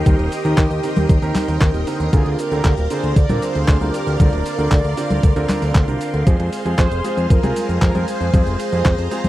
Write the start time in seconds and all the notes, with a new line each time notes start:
Already playing: A#4 D#5 G5 C6
0.06 D#2 D#3 C4 D#4 G4 A#4, kick, closed hi-hat, high conga, cabasa
0.19 D#1, closed hi-hat
0.32 open hi-hat, cabasa
0.45 D#2 D#3 C4 D#4 G4 A#4, closed hi-hat, cabasa
0.58 D#2, kick, clap, closed hi-hat, cabasa
0.71 D#2, closed hi-hat, cabasa
0.83 D#3 C4 D#4 G4 A#4, open hi-hat, cabasa
0.96 D#2, closed hi-hat, high conga, cabasa
1.09 D#2, kick, closed hi-hat, cabasa
1.22 D#2 D#3 C4 D#4 G4 A#4, closed hi-hat, cabasa
1.35 clap, open hi-hat, high conga, cabasa
1.48 D#2 D#3 C4 D#4 G4 A#4, open hi-hat, cabasa
1.61 D#2, kick, clap, closed hi-hat, cabasa
1.74 D#1, closed hi-hat, cabasa
1.87 D3 C4 D#4 G4 A#4, open hi-hat, cabasa
2.00 D#2, closed hi-hat, cabasa
2.13 D2 D3 C4 D4 F4 G#4 A#4 D5 F5 C6, kick, closed hi-hat, cabasa
2.26 D2, closed hi-hat
2.39 G4 A#4, open hi-hat, cabasa
2.52 D2 D3 C4 D4 F4 A#4, closed hi-hat, cabasa
2.65 D2, kick, clap, closed hi-hat, cabasa
2.78 D1, closed hi-hat, cabasa
2.90 D3 C4 D4 F4 G#4 A#4 C5, open hi-hat, cabasa
3.03 D2, closed hi-hat, cabasa
3.16 D2 A#4 D5, kick, closed hi-hat, cabasa
3.29 A#1 D3 C4 D4 F4 A#4, closed hi-hat, high conga, cabasa
3.42 G#4 C5, open hi-hat, cabasa
3.55 D2, closed hi-hat, cabasa
3.68 D2, kick, clap, closed hi-hat, cabasa
3.81 D2 D3 C4 D4 F4 A#4, closed hi-hat, high conga, cabasa
3.94 G4 A#4, open hi-hat, cabasa
4.07 D2, closed hi-hat, cabasa
4.20 D2 D3 C4 D4 F4 A#4 D5, kick, closed hi-hat, high conga, cabasa
4.33 D1, closed hi-hat
4.46 open hi-hat, cabasa
4.59 D2 D3 C4 D4 F4 A#4, closed hi-hat, cabasa
4.71 D2, kick, clap, closed hi-hat, cabasa
4.84 D2, closed hi-hat, cabasa
4.97 D3 C4 D4 F4 A#4, open hi-hat, cabasa
5.10 D2, closed hi-hat, high conga, cabasa
5.23 D2, kick, closed hi-hat, cabasa
5.36 D2 D3 C4 D4 F4 A#4, closed hi-hat, cabasa
5.49 clap, open hi-hat, high conga, cabasa
5.62 D2, open hi-hat, cabasa
5.75 D2, kick, clap, closed hi-hat, cabasa
5.88 C2 D3 C4 D4 F4 A#4, closed hi-hat, cabasa
6.01 open hi-hat, cabasa
6.14 D2, closed hi-hat, cabasa
6.27 F2 G#3 C4 F4 G#4 C5 F5, kick, closed hi-hat, cabasa
6.40 F2, closed hi-hat
6.53 open hi-hat, cabasa
6.65 F2 G#3 C4 F4 G#4, closed hi-hat, cabasa
6.78 F2 G#4 C5, kick, clap, closed hi-hat, cabasa
6.91 F1, closed hi-hat, cabasa
7.04 G#3 C4 F4 G#4, open hi-hat, cabasa
7.17 F2, closed hi-hat, cabasa
7.30 F2 F4 A#4, kick, closed hi-hat, cabasa
7.43 C2 G#3 C4 F4 G#4, closed hi-hat, high conga, cabasa
7.56 open hi-hat, cabasa
7.69 F2, closed hi-hat, cabasa
7.82 F2 F4 A#4, kick, clap, closed hi-hat, cabasa
7.95 F2 G#3 C4 F4 G#4, closed hi-hat, high conga, cabasa
8.08 G#4 C5, open hi-hat, cabasa
8.21 F2, closed hi-hat, cabasa
8.34 F2 G#3 C4 F4 G#4 A#5, kick, closed hi-hat, high conga, cabasa
8.46 F1, closed hi-hat, cabasa
8.60 open hi-hat, cabasa
8.72 F2 G#3 C4 F4 G#4, closed hi-hat, cabasa
8.85 F2, kick, clap, closed hi-hat, cabasa
8.98 F2, closed hi-hat, cabasa
9.11 G#3 C4 F4 G#4, open hi-hat, cabasa
9.24 F2, closed hi-hat, high conga, cabasa